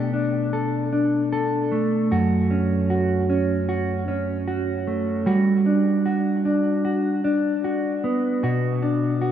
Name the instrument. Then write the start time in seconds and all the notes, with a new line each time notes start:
clean electric guitar
Already playing: B2 A3 D4 A4
0.13 D4
0.53 A4
0.93 D4
1.33 A4
1.72 A3
2.11 F#2 F#4
2.51 C#4
2.90 F#4
3.30 C#4
3.69 F#4
4.08 C#4
4.48 F#4
4.87 A3
5.26 G3 F#4
5.66 D4
6.06 F#4
6.45 D4
6.85 F#4
7.24 D4
7.64 F#4
8.04 B3
8.43 B2 F#4
8.82 D4
9.21 F#4